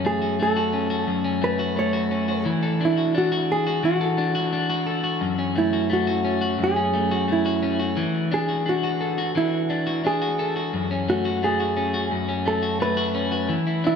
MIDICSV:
0, 0, Header, 1, 3, 480
1, 0, Start_track
1, 0, Key_signature, 3, "minor"
1, 0, Tempo, 689655
1, 1710, Time_signature, 4, 2, 24, 8
1, 9714, End_track
2, 0, Start_track
2, 0, Title_t, "Hollow-body jazz guitar"
2, 0, Program_c, 0, 26
2, 45, Note_on_c, 0, 68, 83
2, 285, Note_off_c, 0, 68, 0
2, 296, Note_on_c, 0, 69, 89
2, 735, Note_off_c, 0, 69, 0
2, 1002, Note_on_c, 0, 71, 80
2, 1242, Note_off_c, 0, 71, 0
2, 1245, Note_on_c, 0, 73, 85
2, 1690, Note_off_c, 0, 73, 0
2, 1984, Note_on_c, 0, 64, 66
2, 2210, Note_off_c, 0, 64, 0
2, 2212, Note_on_c, 0, 66, 79
2, 2448, Note_off_c, 0, 66, 0
2, 2448, Note_on_c, 0, 68, 82
2, 2663, Note_off_c, 0, 68, 0
2, 2679, Note_on_c, 0, 66, 78
2, 3367, Note_off_c, 0, 66, 0
2, 3885, Note_on_c, 0, 64, 67
2, 4124, Note_off_c, 0, 64, 0
2, 4128, Note_on_c, 0, 66, 77
2, 4614, Note_off_c, 0, 66, 0
2, 4619, Note_on_c, 0, 68, 89
2, 5097, Note_on_c, 0, 64, 60
2, 5099, Note_off_c, 0, 68, 0
2, 5420, Note_off_c, 0, 64, 0
2, 5805, Note_on_c, 0, 68, 86
2, 6044, Note_off_c, 0, 68, 0
2, 6049, Note_on_c, 0, 66, 89
2, 6521, Note_off_c, 0, 66, 0
2, 6524, Note_on_c, 0, 64, 73
2, 7006, Note_on_c, 0, 68, 78
2, 7011, Note_off_c, 0, 64, 0
2, 7333, Note_off_c, 0, 68, 0
2, 7723, Note_on_c, 0, 66, 82
2, 7964, Note_off_c, 0, 66, 0
2, 7964, Note_on_c, 0, 68, 85
2, 8409, Note_off_c, 0, 68, 0
2, 8683, Note_on_c, 0, 69, 77
2, 8920, Note_off_c, 0, 69, 0
2, 8922, Note_on_c, 0, 71, 91
2, 9369, Note_off_c, 0, 71, 0
2, 9652, Note_on_c, 0, 64, 82
2, 9714, Note_off_c, 0, 64, 0
2, 9714, End_track
3, 0, Start_track
3, 0, Title_t, "Clean electric guitar"
3, 0, Program_c, 1, 27
3, 0, Note_on_c, 1, 42, 68
3, 0, Note_on_c, 1, 52, 62
3, 0, Note_on_c, 1, 61, 49
3, 0, Note_on_c, 1, 66, 56
3, 33, Note_on_c, 1, 57, 54
3, 148, Note_off_c, 1, 66, 0
3, 151, Note_on_c, 1, 66, 53
3, 172, Note_off_c, 1, 52, 0
3, 272, Note_off_c, 1, 57, 0
3, 275, Note_on_c, 1, 57, 55
3, 390, Note_off_c, 1, 66, 0
3, 393, Note_on_c, 1, 66, 59
3, 502, Note_off_c, 1, 61, 0
3, 510, Note_on_c, 1, 61, 54
3, 625, Note_off_c, 1, 66, 0
3, 628, Note_on_c, 1, 66, 57
3, 738, Note_off_c, 1, 42, 0
3, 746, Note_on_c, 1, 42, 62
3, 857, Note_off_c, 1, 61, 0
3, 865, Note_on_c, 1, 61, 54
3, 983, Note_off_c, 1, 57, 0
3, 986, Note_on_c, 1, 57, 48
3, 1105, Note_off_c, 1, 66, 0
3, 1108, Note_on_c, 1, 66, 55
3, 1225, Note_off_c, 1, 57, 0
3, 1228, Note_on_c, 1, 57, 52
3, 1342, Note_off_c, 1, 66, 0
3, 1345, Note_on_c, 1, 66, 55
3, 1460, Note_off_c, 1, 61, 0
3, 1468, Note_on_c, 1, 61, 50
3, 1585, Note_off_c, 1, 66, 0
3, 1588, Note_on_c, 1, 66, 52
3, 1708, Note_on_c, 1, 52, 69
3, 1756, Note_off_c, 1, 42, 0
3, 1757, Note_off_c, 1, 61, 0
3, 1828, Note_on_c, 1, 69, 51
3, 1950, Note_off_c, 1, 57, 0
3, 1952, Note_on_c, 1, 62, 51
3, 2068, Note_off_c, 1, 66, 0
3, 2071, Note_on_c, 1, 66, 48
3, 2181, Note_off_c, 1, 62, 0
3, 2189, Note_on_c, 1, 62, 53
3, 2307, Note_off_c, 1, 66, 0
3, 2310, Note_on_c, 1, 66, 58
3, 2549, Note_off_c, 1, 66, 0
3, 2552, Note_on_c, 1, 66, 58
3, 2665, Note_off_c, 1, 52, 0
3, 2668, Note_on_c, 1, 52, 66
3, 2788, Note_off_c, 1, 69, 0
3, 2791, Note_on_c, 1, 69, 52
3, 2901, Note_off_c, 1, 62, 0
3, 2909, Note_on_c, 1, 62, 53
3, 3024, Note_off_c, 1, 66, 0
3, 3026, Note_on_c, 1, 66, 57
3, 3141, Note_off_c, 1, 62, 0
3, 3150, Note_on_c, 1, 62, 47
3, 3266, Note_off_c, 1, 66, 0
3, 3268, Note_on_c, 1, 66, 61
3, 3383, Note_off_c, 1, 69, 0
3, 3386, Note_on_c, 1, 69, 51
3, 3502, Note_off_c, 1, 66, 0
3, 3505, Note_on_c, 1, 66, 53
3, 3626, Note_on_c, 1, 42, 67
3, 3678, Note_off_c, 1, 62, 0
3, 3745, Note_off_c, 1, 69, 0
3, 3747, Note_on_c, 1, 61, 51
3, 3867, Note_on_c, 1, 57, 51
3, 3986, Note_off_c, 1, 66, 0
3, 3988, Note_on_c, 1, 66, 50
3, 4009, Note_off_c, 1, 52, 0
3, 4100, Note_off_c, 1, 57, 0
3, 4103, Note_on_c, 1, 57, 51
3, 4223, Note_off_c, 1, 66, 0
3, 4226, Note_on_c, 1, 66, 56
3, 4339, Note_off_c, 1, 61, 0
3, 4347, Note_on_c, 1, 61, 54
3, 4462, Note_off_c, 1, 66, 0
3, 4464, Note_on_c, 1, 66, 58
3, 4577, Note_off_c, 1, 42, 0
3, 4585, Note_on_c, 1, 42, 61
3, 4699, Note_off_c, 1, 61, 0
3, 4707, Note_on_c, 1, 61, 51
3, 4825, Note_off_c, 1, 57, 0
3, 4827, Note_on_c, 1, 57, 52
3, 4949, Note_off_c, 1, 66, 0
3, 4952, Note_on_c, 1, 66, 60
3, 5065, Note_off_c, 1, 57, 0
3, 5067, Note_on_c, 1, 57, 51
3, 5186, Note_off_c, 1, 66, 0
3, 5189, Note_on_c, 1, 66, 61
3, 5300, Note_off_c, 1, 61, 0
3, 5308, Note_on_c, 1, 61, 52
3, 5422, Note_off_c, 1, 66, 0
3, 5425, Note_on_c, 1, 66, 52
3, 5545, Note_on_c, 1, 52, 72
3, 5596, Note_off_c, 1, 42, 0
3, 5597, Note_off_c, 1, 61, 0
3, 5784, Note_off_c, 1, 57, 0
3, 5787, Note_on_c, 1, 62, 54
3, 5905, Note_off_c, 1, 66, 0
3, 5907, Note_on_c, 1, 66, 48
3, 6018, Note_off_c, 1, 62, 0
3, 6026, Note_on_c, 1, 62, 54
3, 6146, Note_off_c, 1, 66, 0
3, 6148, Note_on_c, 1, 66, 56
3, 6269, Note_on_c, 1, 69, 54
3, 6386, Note_off_c, 1, 66, 0
3, 6389, Note_on_c, 1, 66, 60
3, 6506, Note_off_c, 1, 52, 0
3, 6509, Note_on_c, 1, 52, 62
3, 6741, Note_off_c, 1, 62, 0
3, 6750, Note_on_c, 1, 62, 50
3, 6865, Note_off_c, 1, 66, 0
3, 6867, Note_on_c, 1, 66, 58
3, 6983, Note_off_c, 1, 62, 0
3, 6991, Note_on_c, 1, 62, 51
3, 7108, Note_off_c, 1, 66, 0
3, 7111, Note_on_c, 1, 66, 66
3, 7229, Note_off_c, 1, 69, 0
3, 7232, Note_on_c, 1, 69, 60
3, 7347, Note_off_c, 1, 66, 0
3, 7349, Note_on_c, 1, 66, 58
3, 7469, Note_on_c, 1, 42, 68
3, 7519, Note_off_c, 1, 62, 0
3, 7590, Note_off_c, 1, 69, 0
3, 7592, Note_on_c, 1, 61, 51
3, 7715, Note_on_c, 1, 57, 54
3, 7829, Note_off_c, 1, 66, 0
3, 7832, Note_on_c, 1, 66, 55
3, 7853, Note_off_c, 1, 52, 0
3, 7953, Note_off_c, 1, 57, 0
3, 7955, Note_on_c, 1, 57, 54
3, 8070, Note_off_c, 1, 66, 0
3, 8073, Note_on_c, 1, 66, 56
3, 8181, Note_off_c, 1, 61, 0
3, 8190, Note_on_c, 1, 61, 53
3, 8307, Note_off_c, 1, 66, 0
3, 8309, Note_on_c, 1, 66, 62
3, 8423, Note_off_c, 1, 42, 0
3, 8431, Note_on_c, 1, 42, 66
3, 8543, Note_off_c, 1, 61, 0
3, 8551, Note_on_c, 1, 61, 57
3, 8666, Note_off_c, 1, 57, 0
3, 8669, Note_on_c, 1, 57, 50
3, 8784, Note_off_c, 1, 66, 0
3, 8787, Note_on_c, 1, 66, 60
3, 8907, Note_off_c, 1, 57, 0
3, 8910, Note_on_c, 1, 57, 54
3, 9018, Note_off_c, 1, 66, 0
3, 9027, Note_on_c, 1, 66, 64
3, 9141, Note_off_c, 1, 61, 0
3, 9150, Note_on_c, 1, 61, 55
3, 9261, Note_off_c, 1, 66, 0
3, 9269, Note_on_c, 1, 66, 54
3, 9388, Note_on_c, 1, 52, 68
3, 9438, Note_off_c, 1, 57, 0
3, 9438, Note_off_c, 1, 61, 0
3, 9438, Note_off_c, 1, 66, 0
3, 9439, Note_off_c, 1, 42, 0
3, 9513, Note_on_c, 1, 64, 52
3, 9633, Note_on_c, 1, 62, 52
3, 9714, Note_off_c, 1, 52, 0
3, 9714, Note_off_c, 1, 62, 0
3, 9714, Note_off_c, 1, 64, 0
3, 9714, End_track
0, 0, End_of_file